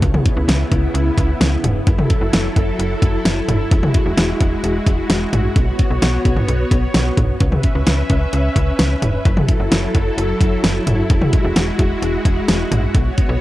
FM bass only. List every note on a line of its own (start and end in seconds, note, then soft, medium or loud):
0.02 0.18 C#2 loud
0.37 0.45 C#2 medium
0.48 0.64 C#2 loud
0.71 0.88 C#2 medium
0.94 1.10 C#2 loud
1.17 1.34 C#2 medium
1.41 1.57 C#2 loud
1.64 1.80 E1 medium
1.87 2.03 F#1 loud
2.21 2.29 F#1 medium
2.33 2.49 F#1 loud
2.56 2.72 F#1 loud
2.79 2.95 F#1 loud
3.02 3.18 F#1 medium
3.25 3.41 F#1 loud
3.48 3.64 F#1 medium
3.71 3.88 E1 loud
4.06 4.14 E1 medium
4.17 4.34 E1 loud
4.41 4.57 E1 loud
4.64 4.80 E1 loud
4.87 5.03 E1 medium
5.10 5.26 E1 loud
5.33 5.49 A1 medium
5.56 5.72 B1 loud
5.91 5.99 B1 medium
6.02 6.18 B1 loud
6.25 6.41 B1 medium
6.48 6.64 B1 loud
6.71 6.87 B1 medium
6.95 7.11 B1 loud
7.17 7.34 B1 medium
7.41 7.57 C#2 loud
7.75 7.83 C#2 medium
7.87 8.03 C#2 loud
8.10 8.26 C#2 loud
8.33 8.49 C#2 loud
8.56 8.72 C#2 loud
8.79 8.95 C#2 loud
9.02 9.18 E1 medium
9.25 9.42 F#1 loud
9.60 9.68 F#1 medium
9.71 9.88 F#1 loud
9.95 10.11 F#1 loud
10.18 10.34 F#1 loud
10.41 10.57 F#1 medium
10.64 10.80 F#1 loud
10.87 11.03 F#1 medium
11.10 11.26 E1 loud
11.45 11.53 E1 loud
11.56 11.72 E1 loud
11.79 11.95 E1 loud
12.02 12.18 E1 loud
12.25 12.41 E1 loud
12.48 12.64 E1 loud
12.71 12.88 A1 medium
12.95 13.11 B1 loud
13.29 13.37 B1 loud